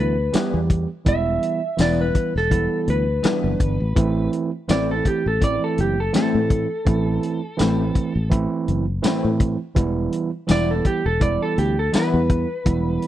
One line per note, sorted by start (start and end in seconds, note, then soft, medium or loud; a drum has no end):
0.00 0.29 D2 medium
0.00 0.14 E3 medium
0.00 0.14 G3 medium
0.00 0.15 B3 medium
0.00 0.15 E4 medium
0.00 0.34 B4 medium
0.32 0.86 E3 medium
0.32 0.57 E3 medium
0.32 0.87 G3 medium
0.32 0.58 G3 medium
0.32 0.87 B3 medium
0.32 0.58 B3 medium
0.32 0.58 E4 medium
0.32 0.87 G4 medium
0.32 muted fingered electric bass stroke soft
0.32 snare loud
0.32 closed hi-hat medium
0.32 tambourine loud
0.54 0.85 E2 medium
0.70 kick medium
0.70 closed hi-hat medium
1.05 1.37 E1 medium
1.05 1.59 E3 medium
1.05 1.59 G3 medium
1.05 1.60 B3 medium
1.05 1.60 E4 medium
1.05 1.78 E5 medium
1.05 kick loud
1.05 closed hi-hat medium
1.43 closed hi-hat medium
1.77 2.10 E1 medium
1.77 2.31 E3 medium
1.77 2.02 E3 medium
1.77 2.32 G3 medium
1.77 2.03 G3 medium
1.77 2.32 B3 medium
1.77 2.03 B3 medium
1.77 2.32 E4 medium
1.77 2.03 E4 medium
1.77 snare loud
1.77 closed hi-hat medium
1.77 tambourine loud
1.81 2.00 D5 medium
2.01 2.35 B4 medium
2.15 kick medium
2.15 closed hi-hat medium
2.36 2.66 E1 medium
2.36 2.88 A4 medium
2.36 snare soft
2.50 3.04 E3 medium
2.50 3.04 G3 medium
2.50 3.05 B3 medium
2.50 3.05 E4 medium
2.50 kick medium
2.50 closed hi-hat medium
2.88 3.19 D2 medium
2.88 4.30 B4 medium
2.88 closed hi-hat medium
3.23 3.77 E3 medium
3.23 3.47 E3 medium
3.23 3.77 G3 medium
3.23 3.47 G3 medium
3.23 3.77 B3 medium
3.23 3.48 B3 medium
3.23 3.77 D4 medium
3.23 3.48 E4 medium
3.23 muted fingered electric bass stroke soft
3.23 snare loud
3.23 closed hi-hat medium
3.23 tambourine medium
3.44 3.59 F#1 medium
3.60 3.78 G1 medium
3.60 kick medium
3.60 closed hi-hat medium
3.80 3.95 A1 medium
3.96 4.28 A1 medium
3.96 4.49 E3 medium
3.96 4.50 A3 medium
3.96 4.50 C4 medium
3.96 4.50 E4 loud
3.96 kick loud
3.96 closed hi-hat medium
4.33 closed hi-hat medium
4.68 5.00 A1 medium
4.68 4.92 A2 medium
4.68 5.22 E3 medium
4.68 5.22 A3 medium
4.68 4.92 A3 medium
4.68 5.22 C4 medium
4.68 4.93 C4 medium
4.68 5.23 E4 medium
4.68 4.93 E4 medium
4.68 4.89 D5 medium
4.68 snare loud
4.68 closed hi-hat medium
4.68 tambourine loud
4.91 5.06 A4 medium
5.05 5.26 G4 medium
5.05 kick medium
5.05 closed hi-hat medium
5.26 5.57 A1 medium
5.26 5.42 A4 medium
5.41 5.94 E3 medium
5.41 5.95 A3 medium
5.41 5.95 C4 medium
5.41 5.95 E4 medium
5.41 5.62 D5 medium
5.41 kick medium
5.41 closed hi-hat medium
5.64 5.79 A4 medium
5.78 6.09 F#1 medium
5.78 5.99 G4 medium
5.78 closed hi-hat medium
6.00 6.15 A4 medium
6.13 6.37 A2 medium
6.13 6.67 E3 medium
6.13 6.67 A3 medium
6.13 6.38 A3 medium
6.13 6.67 C4 medium
6.13 6.38 C4 medium
6.13 6.67 E4 medium
6.13 6.38 E4 medium
6.13 8.29 A4 medium
6.13 snare loud
6.13 closed hi-hat medium
6.13 tambourine loud
6.35 6.65 A2 medium
6.50 kick medium
6.50 closed hi-hat medium
6.85 7.18 A1 medium
6.85 7.39 E3 medium
6.85 7.39 A3 medium
6.85 7.40 C4 medium
6.85 7.40 E4 medium
6.85 kick loud
6.85 closed hi-hat medium
7.23 closed hi-hat medium
7.57 7.90 A1 medium
7.57 7.82 A2 medium
7.57 8.11 E3 loud
7.57 8.11 A3 medium
7.57 7.83 A3 medium
7.57 8.12 C4 medium
7.57 7.83 C4 medium
7.57 8.12 E4 loud
7.57 7.83 E4 medium
7.57 snare loud
7.57 closed hi-hat medium
7.57 tambourine loud
7.95 kick medium
7.95 closed hi-hat medium
8.15 8.46 A1 medium
8.30 8.84 E3 medium
8.30 8.84 A3 medium
8.30 8.84 C4 medium
8.30 8.84 E4 loud
8.30 kick medium
8.30 closed hi-hat medium
8.68 8.99 F#1 medium
8.68 closed hi-hat medium
9.02 9.27 A2 medium
9.02 9.56 E3 medium
9.02 9.56 A3 medium
9.02 9.27 A3 medium
9.02 9.57 C4 medium
9.02 9.28 C4 medium
9.02 9.57 E4 loud
9.02 9.28 E4 medium
9.02 muted fingered electric bass stroke soft
9.02 snare loud
9.02 closed hi-hat medium
9.02 tambourine loud
9.24 9.55 A2 medium
9.40 kick medium
9.40 closed hi-hat medium
9.75 10.07 E1 medium
9.75 10.29 E3 loud
9.75 10.29 G3 medium
9.75 10.29 B3 medium
9.75 10.30 E4 medium
9.75 kick loud
9.75 closed hi-hat medium
10.12 closed hi-hat medium
10.47 10.80 E1 medium
10.47 11.01 E3 medium
10.47 10.72 E3 medium
10.47 11.01 G3 medium
10.47 10.72 G3 medium
10.47 11.02 B3 medium
10.47 10.72 B3 medium
10.47 11.02 E4 medium
10.47 10.73 E4 medium
10.47 10.69 D5 loud
10.47 snare loud
10.47 closed hi-hat medium
10.47 tambourine loud
10.71 10.86 A4 medium
10.85 11.05 G4 medium
10.85 kick medium
10.85 closed hi-hat medium
11.06 11.36 E1 medium
11.06 11.21 A4 medium
11.20 11.74 E3 medium
11.20 11.74 G3 medium
11.20 11.74 B3 medium
11.20 11.75 E4 medium
11.20 11.41 D5 medium
11.20 kick medium
11.20 closed hi-hat medium
11.42 11.58 A4 medium
11.58 11.89 D2 medium
11.58 11.77 G4 medium
11.58 closed hi-hat medium
11.79 11.94 A4 medium
11.92 12.46 E3 medium
11.92 12.17 E3 medium
11.92 12.46 G3 medium
11.92 12.17 G3 medium
11.92 12.47 B3 medium
11.92 12.17 B3 medium
11.92 12.47 E4 medium
11.92 12.18 E4 medium
11.92 13.07 B4 medium
11.92 muted fingered electric bass stroke soft
11.92 snare loud
11.92 closed hi-hat medium
11.92 tambourine loud
12.14 12.44 E2 medium
12.30 kick medium
12.30 closed hi-hat medium
12.65 12.97 E1 medium
12.65 13.07 E3 medium
12.65 13.07 G3 medium
12.65 13.07 B3 medium
12.65 13.07 E4 medium
12.65 kick loud
12.65 closed hi-hat medium
13.02 closed hi-hat medium